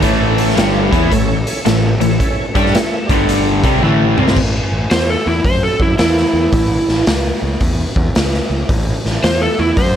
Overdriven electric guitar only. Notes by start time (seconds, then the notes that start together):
0.03 A2 E3 A3
0.57 G2 D3 G3
0.92 E3 B3 E4
1.11 A2 E3
1.65 A2 E3
2.01 A2 E3
2.55 G3 D4 G4
3.10 G2 D3 G3
3.64 C3 G3 C4
3.83 A2 E3 A3
4.18 C3 G3 C4